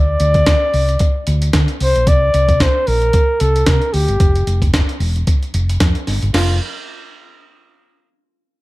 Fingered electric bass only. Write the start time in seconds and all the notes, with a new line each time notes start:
Already playing: D2
0.20 D2
0.74 C2
1.27 D2
1.54 D3
1.81 C2
1.96 A#1
2.07 C2
2.34 C2
2.88 A#1
3.41 C2
3.67 C3
3.94 D2
4.09 G1
4.20 F1
4.47 F1
5.00 E1
5.54 F1
5.81 F2
6.08 G1
6.23 G1
6.34 F1